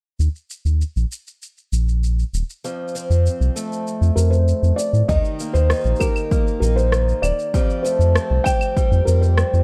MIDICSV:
0, 0, Header, 1, 5, 480
1, 0, Start_track
1, 0, Tempo, 612245
1, 152, Time_signature, 4, 2, 24, 8
1, 7554, End_track
2, 0, Start_track
2, 0, Title_t, "Felt piano"
2, 0, Program_c, 0, 0
2, 3258, Note_on_c, 0, 70, 70
2, 3375, Note_on_c, 0, 72, 83
2, 3389, Note_off_c, 0, 70, 0
2, 3717, Note_off_c, 0, 72, 0
2, 3733, Note_on_c, 0, 74, 83
2, 3985, Note_on_c, 0, 75, 92
2, 3990, Note_off_c, 0, 74, 0
2, 4339, Note_on_c, 0, 72, 102
2, 4359, Note_off_c, 0, 75, 0
2, 4701, Note_on_c, 0, 70, 88
2, 4717, Note_off_c, 0, 72, 0
2, 5164, Note_off_c, 0, 70, 0
2, 5175, Note_on_c, 0, 70, 77
2, 5299, Note_on_c, 0, 72, 99
2, 5308, Note_off_c, 0, 70, 0
2, 5662, Note_on_c, 0, 74, 101
2, 5677, Note_off_c, 0, 72, 0
2, 6136, Note_on_c, 0, 72, 90
2, 6162, Note_off_c, 0, 74, 0
2, 6617, Note_on_c, 0, 79, 118
2, 6639, Note_off_c, 0, 72, 0
2, 7097, Note_on_c, 0, 70, 81
2, 7119, Note_off_c, 0, 79, 0
2, 7223, Note_on_c, 0, 72, 80
2, 7228, Note_off_c, 0, 70, 0
2, 7554, Note_off_c, 0, 72, 0
2, 7554, End_track
3, 0, Start_track
3, 0, Title_t, "Twelve-string acoustic guitar"
3, 0, Program_c, 1, 25
3, 2073, Note_on_c, 1, 41, 70
3, 2313, Note_on_c, 1, 60, 55
3, 2790, Note_on_c, 1, 57, 55
3, 3990, Note_on_c, 1, 51, 75
3, 3992, Note_off_c, 1, 41, 0
3, 3995, Note_on_c, 1, 67, 62
3, 4039, Note_off_c, 1, 57, 0
3, 4041, Note_off_c, 1, 60, 0
3, 4235, Note_on_c, 1, 58, 57
3, 4473, Note_on_c, 1, 63, 58
3, 4709, Note_off_c, 1, 67, 0
3, 4712, Note_on_c, 1, 67, 65
3, 4940, Note_off_c, 1, 58, 0
3, 4949, Note_on_c, 1, 58, 63
3, 5182, Note_off_c, 1, 63, 0
3, 5191, Note_on_c, 1, 63, 54
3, 5911, Note_off_c, 1, 51, 0
3, 5911, Note_on_c, 1, 41, 77
3, 5914, Note_off_c, 1, 67, 0
3, 5917, Note_on_c, 1, 67, 62
3, 5958, Note_off_c, 1, 58, 0
3, 5959, Note_off_c, 1, 63, 0
3, 6150, Note_on_c, 1, 57, 58
3, 6393, Note_on_c, 1, 60, 54
3, 6630, Note_off_c, 1, 67, 0
3, 6633, Note_on_c, 1, 67, 66
3, 6873, Note_on_c, 1, 55, 66
3, 7102, Note_off_c, 1, 60, 0
3, 7112, Note_on_c, 1, 60, 56
3, 7554, Note_off_c, 1, 41, 0
3, 7554, Note_off_c, 1, 55, 0
3, 7554, Note_off_c, 1, 57, 0
3, 7554, Note_off_c, 1, 60, 0
3, 7554, Note_off_c, 1, 67, 0
3, 7554, End_track
4, 0, Start_track
4, 0, Title_t, "Analog synth bass"
4, 0, Program_c, 2, 38
4, 151, Note_on_c, 2, 39, 92
4, 224, Note_off_c, 2, 39, 0
4, 509, Note_on_c, 2, 39, 70
4, 656, Note_off_c, 2, 39, 0
4, 753, Note_on_c, 2, 34, 89
4, 825, Note_off_c, 2, 34, 0
4, 1350, Note_on_c, 2, 34, 85
4, 1755, Note_off_c, 2, 34, 0
4, 1829, Note_on_c, 2, 27, 98
4, 1903, Note_off_c, 2, 27, 0
4, 2431, Note_on_c, 2, 41, 81
4, 2577, Note_off_c, 2, 41, 0
4, 2669, Note_on_c, 2, 36, 92
4, 2743, Note_off_c, 2, 36, 0
4, 3146, Note_on_c, 2, 41, 87
4, 3221, Note_off_c, 2, 41, 0
4, 3264, Note_on_c, 2, 41, 81
4, 3552, Note_off_c, 2, 41, 0
4, 3627, Note_on_c, 2, 41, 87
4, 3702, Note_off_c, 2, 41, 0
4, 3866, Note_on_c, 2, 45, 88
4, 3942, Note_off_c, 2, 45, 0
4, 3988, Note_on_c, 2, 39, 90
4, 4063, Note_off_c, 2, 39, 0
4, 4346, Note_on_c, 2, 39, 79
4, 4494, Note_off_c, 2, 39, 0
4, 4584, Note_on_c, 2, 34, 93
4, 4660, Note_off_c, 2, 34, 0
4, 5183, Note_on_c, 2, 34, 82
4, 5592, Note_off_c, 2, 34, 0
4, 5664, Note_on_c, 2, 27, 99
4, 5740, Note_off_c, 2, 27, 0
4, 6265, Note_on_c, 2, 41, 85
4, 6413, Note_off_c, 2, 41, 0
4, 6510, Note_on_c, 2, 36, 86
4, 6584, Note_off_c, 2, 36, 0
4, 6988, Note_on_c, 2, 41, 83
4, 7063, Note_off_c, 2, 41, 0
4, 7114, Note_on_c, 2, 41, 83
4, 7397, Note_off_c, 2, 41, 0
4, 7474, Note_on_c, 2, 41, 83
4, 7546, Note_off_c, 2, 41, 0
4, 7554, End_track
5, 0, Start_track
5, 0, Title_t, "Drums"
5, 156, Note_on_c, 9, 82, 35
5, 235, Note_off_c, 9, 82, 0
5, 278, Note_on_c, 9, 82, 16
5, 356, Note_off_c, 9, 82, 0
5, 395, Note_on_c, 9, 82, 59
5, 473, Note_off_c, 9, 82, 0
5, 516, Note_on_c, 9, 82, 29
5, 595, Note_off_c, 9, 82, 0
5, 638, Note_on_c, 9, 82, 38
5, 717, Note_off_c, 9, 82, 0
5, 758, Note_on_c, 9, 82, 18
5, 836, Note_off_c, 9, 82, 0
5, 878, Note_on_c, 9, 82, 69
5, 956, Note_off_c, 9, 82, 0
5, 998, Note_on_c, 9, 82, 28
5, 1076, Note_off_c, 9, 82, 0
5, 1117, Note_on_c, 9, 82, 40
5, 1195, Note_off_c, 9, 82, 0
5, 1236, Note_on_c, 9, 82, 17
5, 1314, Note_off_c, 9, 82, 0
5, 1356, Note_on_c, 9, 82, 56
5, 1434, Note_off_c, 9, 82, 0
5, 1478, Note_on_c, 9, 82, 29
5, 1556, Note_off_c, 9, 82, 0
5, 1597, Note_on_c, 9, 82, 36
5, 1675, Note_off_c, 9, 82, 0
5, 1717, Note_on_c, 9, 82, 16
5, 1796, Note_off_c, 9, 82, 0
5, 1837, Note_on_c, 9, 82, 67
5, 1916, Note_off_c, 9, 82, 0
5, 1958, Note_on_c, 9, 82, 29
5, 2037, Note_off_c, 9, 82, 0
5, 2077, Note_on_c, 9, 82, 41
5, 2155, Note_off_c, 9, 82, 0
5, 2258, Note_on_c, 9, 82, 19
5, 2319, Note_off_c, 9, 82, 0
5, 2319, Note_on_c, 9, 82, 61
5, 2397, Note_off_c, 9, 82, 0
5, 2439, Note_on_c, 9, 82, 31
5, 2517, Note_off_c, 9, 82, 0
5, 2558, Note_on_c, 9, 82, 40
5, 2637, Note_off_c, 9, 82, 0
5, 2679, Note_on_c, 9, 82, 19
5, 2757, Note_off_c, 9, 82, 0
5, 2797, Note_on_c, 9, 82, 72
5, 2875, Note_off_c, 9, 82, 0
5, 2920, Note_on_c, 9, 82, 30
5, 2998, Note_off_c, 9, 82, 0
5, 3038, Note_on_c, 9, 82, 43
5, 3116, Note_off_c, 9, 82, 0
5, 3156, Note_on_c, 9, 82, 20
5, 3234, Note_off_c, 9, 82, 0
5, 3273, Note_on_c, 9, 82, 69
5, 3351, Note_off_c, 9, 82, 0
5, 3393, Note_on_c, 9, 82, 31
5, 3471, Note_off_c, 9, 82, 0
5, 3514, Note_on_c, 9, 82, 41
5, 3593, Note_off_c, 9, 82, 0
5, 3635, Note_on_c, 9, 82, 19
5, 3714, Note_off_c, 9, 82, 0
5, 3754, Note_on_c, 9, 82, 74
5, 3832, Note_off_c, 9, 82, 0
5, 3873, Note_on_c, 9, 82, 30
5, 3951, Note_off_c, 9, 82, 0
5, 3989, Note_on_c, 9, 36, 115
5, 3993, Note_on_c, 9, 82, 38
5, 4068, Note_off_c, 9, 36, 0
5, 4071, Note_off_c, 9, 82, 0
5, 4114, Note_on_c, 9, 82, 20
5, 4192, Note_off_c, 9, 82, 0
5, 4231, Note_on_c, 9, 82, 67
5, 4309, Note_off_c, 9, 82, 0
5, 4352, Note_on_c, 9, 82, 33
5, 4431, Note_off_c, 9, 82, 0
5, 4468, Note_on_c, 9, 37, 93
5, 4474, Note_on_c, 9, 82, 36
5, 4493, Note_off_c, 9, 82, 0
5, 4493, Note_on_c, 9, 82, 30
5, 4513, Note_off_c, 9, 82, 0
5, 4513, Note_on_c, 9, 82, 25
5, 4534, Note_off_c, 9, 82, 0
5, 4534, Note_on_c, 9, 82, 21
5, 4547, Note_off_c, 9, 37, 0
5, 4553, Note_off_c, 9, 82, 0
5, 4553, Note_on_c, 9, 82, 16
5, 4574, Note_off_c, 9, 82, 0
5, 4574, Note_on_c, 9, 82, 14
5, 4592, Note_off_c, 9, 82, 0
5, 4592, Note_on_c, 9, 82, 19
5, 4670, Note_off_c, 9, 82, 0
5, 4670, Note_on_c, 9, 82, 16
5, 4707, Note_on_c, 9, 75, 74
5, 4710, Note_on_c, 9, 36, 97
5, 4713, Note_off_c, 9, 82, 0
5, 4713, Note_on_c, 9, 82, 72
5, 4786, Note_off_c, 9, 75, 0
5, 4788, Note_off_c, 9, 36, 0
5, 4792, Note_off_c, 9, 82, 0
5, 4828, Note_on_c, 9, 75, 55
5, 4834, Note_on_c, 9, 82, 29
5, 4906, Note_off_c, 9, 75, 0
5, 4912, Note_off_c, 9, 82, 0
5, 4950, Note_on_c, 9, 36, 121
5, 4955, Note_on_c, 9, 82, 44
5, 5028, Note_off_c, 9, 36, 0
5, 5034, Note_off_c, 9, 82, 0
5, 5076, Note_on_c, 9, 82, 19
5, 5154, Note_off_c, 9, 82, 0
5, 5196, Note_on_c, 9, 82, 60
5, 5274, Note_off_c, 9, 82, 0
5, 5316, Note_on_c, 9, 82, 29
5, 5394, Note_off_c, 9, 82, 0
5, 5428, Note_on_c, 9, 37, 90
5, 5434, Note_on_c, 9, 82, 37
5, 5506, Note_off_c, 9, 37, 0
5, 5512, Note_off_c, 9, 82, 0
5, 5555, Note_on_c, 9, 82, 18
5, 5634, Note_off_c, 9, 82, 0
5, 5668, Note_on_c, 9, 75, 73
5, 5674, Note_on_c, 9, 82, 70
5, 5747, Note_off_c, 9, 75, 0
5, 5753, Note_off_c, 9, 82, 0
5, 5796, Note_on_c, 9, 82, 27
5, 5874, Note_off_c, 9, 82, 0
5, 5912, Note_on_c, 9, 36, 112
5, 5916, Note_on_c, 9, 82, 41
5, 5990, Note_off_c, 9, 36, 0
5, 5995, Note_off_c, 9, 82, 0
5, 6037, Note_on_c, 9, 82, 20
5, 6115, Note_off_c, 9, 82, 0
5, 6159, Note_on_c, 9, 82, 63
5, 6238, Note_off_c, 9, 82, 0
5, 6279, Note_on_c, 9, 82, 34
5, 6357, Note_off_c, 9, 82, 0
5, 6394, Note_on_c, 9, 37, 96
5, 6400, Note_on_c, 9, 82, 41
5, 6472, Note_off_c, 9, 37, 0
5, 6478, Note_off_c, 9, 82, 0
5, 6630, Note_on_c, 9, 75, 69
5, 6632, Note_on_c, 9, 36, 106
5, 6636, Note_on_c, 9, 82, 76
5, 6709, Note_off_c, 9, 75, 0
5, 6711, Note_off_c, 9, 36, 0
5, 6715, Note_off_c, 9, 82, 0
5, 6750, Note_on_c, 9, 75, 59
5, 6756, Note_on_c, 9, 82, 32
5, 6828, Note_off_c, 9, 75, 0
5, 6834, Note_off_c, 9, 82, 0
5, 6873, Note_on_c, 9, 36, 125
5, 6879, Note_on_c, 9, 82, 43
5, 6951, Note_off_c, 9, 36, 0
5, 6957, Note_off_c, 9, 82, 0
5, 6997, Note_on_c, 9, 82, 22
5, 7075, Note_off_c, 9, 82, 0
5, 7117, Note_on_c, 9, 82, 67
5, 7195, Note_off_c, 9, 82, 0
5, 7237, Note_on_c, 9, 82, 30
5, 7315, Note_off_c, 9, 82, 0
5, 7350, Note_on_c, 9, 37, 101
5, 7356, Note_on_c, 9, 82, 44
5, 7429, Note_off_c, 9, 37, 0
5, 7435, Note_off_c, 9, 82, 0
5, 7479, Note_on_c, 9, 82, 19
5, 7554, Note_off_c, 9, 82, 0
5, 7554, End_track
0, 0, End_of_file